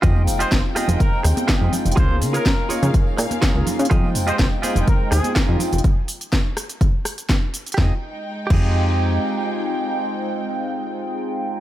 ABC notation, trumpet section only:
X:1
M:4/4
L:1/16
Q:1/4=124
K:Fm
V:1 name="Trumpet section"
z3 c c z3 B2 z6 | c2 z B4 z8 z | z3 c c z3 B2 A2 z4 | z16 |
z16 | z16 |]